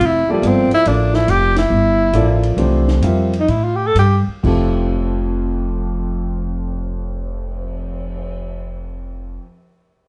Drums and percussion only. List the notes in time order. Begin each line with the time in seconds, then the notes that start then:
0.01 ride
0.43 hi-hat pedal, ride
0.71 ride
0.85 ride
1.14 snare
1.28 hi-hat pedal, ride
1.56 snare, ride
2.13 hi-hat pedal, ride
2.43 ride
2.58 ride
2.88 snare
3.02 hi-hat pedal, ride
3.33 ride
3.48 ride
3.95 hi-hat pedal, ride
4.44 kick, crash
4.77 cymbal swell